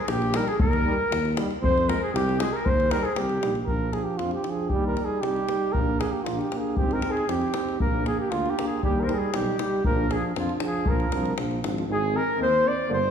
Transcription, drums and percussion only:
0.08 davul high
0.22 davul high
0.34 davul high
0.48 davul high
0.60 davul low
0.73 davul high
1.12 davul high
1.25 davul high
1.37 davul high
1.51 davul high
1.64 davul low
1.78 davul high
1.89 davul high
2.16 davul high
2.29 davul high
2.40 davul high
2.66 davul low
2.80 davul high
2.91 davul high
3.05 davul high
3.16 davul high
3.29 davul high
3.43 davul high
3.55 davul high
3.67 davul low
3.93 davul high
4.19 davul high
4.31 davul high
4.44 davul high
4.70 davul low
4.97 davul high
5.23 davul high
5.36 davul high
5.49 davul high
5.74 davul low
6.01 davul high
6.26 davul high
6.41 davul high
6.52 davul high
6.77 davul low
6.91 davul high
7.02 davul high
7.17 davul high
7.29 davul high
7.42 davul high
7.54 davul high
7.69 davul high
7.80 davul low
8.06 davul high
8.32 davul high
8.46 davul high
8.59 davul high
8.83 davul low
9.09 davul high
9.34 davul high
9.46 davul high
9.59 davul high
9.84 davul low
10.11 davul high
10.36 davul high
10.49 davul high
10.60 davul high
10.86 davul low
11.00 davul high
11.12 davul high
11.26 davul high
11.38 davul high
11.51 davul high
11.64 davul high
11.78 davul high

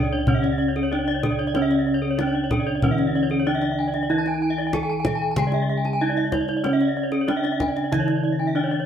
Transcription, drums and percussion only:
0.27 kendang low
0.44 kendang slap
0.76 kendang slap
1.07 kendang slap
1.23 kendang high, kendang low
1.39 kendang slap
1.55 kendang high
1.71 kendang slap
2.19 kendang high
2.51 kendang high, kendang low
2.82 kendang low
2.98 kendang slap
3.30 kendang slap
3.61 kendang slap
3.94 kendang slap
4.26 kendang slap
4.73 kendang high, kendang low
5.05 kendang high, kendang low
5.36 kendang low
5.52 kendang slap
5.85 kendang slap
6.17 kendang slap
6.32 kendang high, kendang low
6.48 kendang slap
6.64 kendang high
6.81 kendang slap
7.12 kendang slap
7.28 kendang high
7.45 kendang slap
7.60 kendang high, kendang low
7.77 kendang slap
7.92 kendang low
8.08 kendang slap

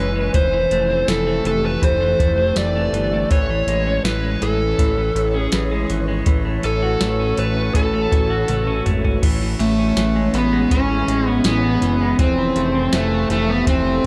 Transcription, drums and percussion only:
0.34 kick, closed hi-hat
0.71 closed hi-hat
1.08 snare, closed hi-hat
1.45 closed hi-hat
1.82 kick, closed hi-hat
2.20 kick, closed hi-hat
2.56 snare, closed hi-hat
2.94 closed hi-hat
3.31 kick, closed hi-hat
3.68 closed hi-hat
4.05 snare, closed hi-hat
4.42 closed hi-hat
4.78 kick, closed hi-hat
5.16 closed hi-hat
5.52 snare, closed hi-hat
5.90 closed hi-hat
6.26 kick, closed hi-hat
6.63 closed hi-hat
7.01 snare, closed hi-hat
7.37 closed hi-hat
7.74 kick, closed hi-hat
8.12 kick, closed hi-hat
8.48 closed hi-hat, high tom
8.67 mid tom
8.86 closed hi-hat, mid tom
9.05 floor tom
9.23 kick, closed hi-hat, crash
9.60 closed hi-hat
9.97 snare, closed hi-hat
10.34 closed hi-hat
10.71 kick, closed hi-hat
11.08 closed hi-hat
11.44 snare, closed hi-hat
11.82 closed hi-hat
12.19 kick, closed hi-hat
12.56 closed hi-hat
12.93 snare, closed hi-hat
13.30 closed hi-hat
13.67 kick, closed hi-hat

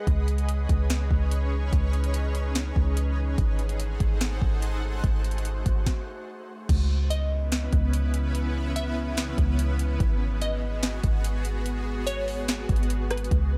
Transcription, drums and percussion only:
0.07 kick, closed hi-hat
0.28 closed hi-hat
0.38 closed hi-hat
0.49 closed hi-hat
0.69 kick, closed hi-hat
0.90 snare, closed hi-hat
1.11 kick
1.31 closed hi-hat
1.73 kick, closed hi-hat
1.93 closed hi-hat
2.04 closed hi-hat
2.14 closed hi-hat
2.35 closed hi-hat
2.55 snare, closed hi-hat
2.76 kick
2.97 closed hi-hat
3.38 kick, closed hi-hat
3.59 closed hi-hat
3.69 closed hi-hat
3.80 closed hi-hat
4.00 kick, closed hi-hat
4.21 snare, closed hi-hat
4.42 kick
4.62 closed hi-hat
5.04 kick, closed hi-hat
5.24 closed hi-hat
5.31 closed hi-hat
5.38 closed hi-hat
5.45 closed hi-hat
5.66 kick, closed hi-hat
5.86 kick, snare
6.69 kick, closed hi-hat, crash
7.11 closed hi-hat
7.52 snare, closed hi-hat
7.73 kick, closed hi-hat
7.93 closed hi-hat
8.14 closed hi-hat
8.35 closed hi-hat
8.76 closed hi-hat
9.17 snare, closed hi-hat
9.38 kick, closed hi-hat
9.59 closed hi-hat
9.79 closed hi-hat
10.00 kick, closed hi-hat
10.42 closed hi-hat
10.83 snare, closed hi-hat
11.04 kick, closed hi-hat
11.24 closed hi-hat
11.45 closed hi-hat
11.66 closed hi-hat
12.07 closed hi-hat
12.28 open hi-hat
12.48 snare, closed hi-hat
12.69 kick, closed hi-hat
12.76 closed hi-hat
12.83 closed hi-hat
12.90 closed hi-hat
13.11 cross-stick, closed hi-hat
13.17 closed hi-hat
13.24 closed hi-hat
13.31 kick, closed hi-hat

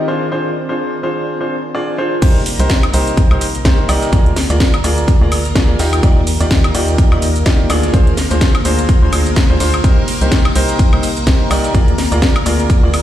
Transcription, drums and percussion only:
2.22 kick, closed hi-hat, crash, shaker
2.46 closed hi-hat, open hi-hat, shaker
2.59 closed hi-hat, shaker
2.70 kick, snare, closed hi-hat, shaker
2.83 closed hi-hat, high woodblock
2.94 closed hi-hat, open hi-hat, shaker
3.07 closed hi-hat, shaker
3.17 kick, closed hi-hat, shaker
3.31 closed hi-hat, high woodblock
3.41 closed hi-hat, open hi-hat, shaker
3.55 closed hi-hat, shaker
3.65 kick, snare, closed hi-hat, shaker
3.89 snare, closed hi-hat, open hi-hat, high woodblock, shaker
4.02 snare, closed hi-hat, shaker
4.13 kick, closed hi-hat, shaker
4.26 closed hi-hat
4.36 snare, closed hi-hat, open hi-hat, shaker
4.50 closed hi-hat, shaker
4.60 kick, snare, closed hi-hat, shaker
4.74 closed hi-hat, high woodblock
4.84 closed hi-hat, open hi-hat, shaker
4.98 closed hi-hat, shaker
5.08 kick, closed hi-hat, shaker
5.32 closed hi-hat, open hi-hat, high woodblock, shaker
5.45 closed hi-hat, shaker
5.56 kick, snare, closed hi-hat, shaker
5.79 open hi-hat, shaker
5.93 closed hi-hat, high woodblock, shaker
6.03 kick, closed hi-hat, shaker
6.27 closed hi-hat, open hi-hat, shaker
6.40 closed hi-hat, shaker
6.51 kick, snare, closed hi-hat
6.64 closed hi-hat, high woodblock
6.75 closed hi-hat, open hi-hat, shaker
6.88 closed hi-hat, shaker
6.98 kick, closed hi-hat, shaker
7.12 closed hi-hat, high woodblock
7.22 closed hi-hat, open hi-hat, shaker
7.36 closed hi-hat, shaker
7.46 kick, snare, closed hi-hat, shaker
7.70 snare, closed hi-hat, open hi-hat, high woodblock, shaker
7.83 snare, closed hi-hat, shaker
7.94 kick, closed hi-hat, shaker
8.07 closed hi-hat
8.17 snare, closed hi-hat, open hi-hat, shaker
8.31 closed hi-hat, shaker
8.41 kick, snare, closed hi-hat, shaker
8.55 closed hi-hat, high woodblock
8.65 closed hi-hat, open hi-hat, shaker
8.79 closed hi-hat, shaker
8.89 kick, closed hi-hat, shaker
9.13 closed hi-hat, open hi-hat, high woodblock, shaker
9.26 closed hi-hat, shaker
9.36 kick, snare, closed hi-hat, shaker
9.60 open hi-hat, shaker
9.74 closed hi-hat, high woodblock, shaker
9.84 kick, closed hi-hat, shaker
10.08 closed hi-hat, open hi-hat, shaker
10.21 closed hi-hat, shaker
10.32 kick, snare, closed hi-hat, shaker
10.45 closed hi-hat, high woodblock
10.55 closed hi-hat, open hi-hat, shaker
10.69 closed hi-hat, shaker
10.79 kick, closed hi-hat, shaker
10.93 closed hi-hat, high woodblock
11.03 closed hi-hat, open hi-hat, shaker
11.17 closed hi-hat, shaker
11.27 kick, snare, closed hi-hat, shaker
11.51 snare, closed hi-hat, open hi-hat, high woodblock, shaker
11.64 snare, closed hi-hat, shaker
11.75 kick, closed hi-hat, shaker
11.88 closed hi-hat
11.98 snare, closed hi-hat, open hi-hat, shaker
12.12 closed hi-hat, shaker
12.22 kick, snare, closed hi-hat, shaker
12.36 closed hi-hat, high woodblock
12.46 closed hi-hat, open hi-hat, shaker
12.60 closed hi-hat, shaker
12.70 kick, closed hi-hat, shaker
12.94 closed hi-hat, open hi-hat, high woodblock, shaker

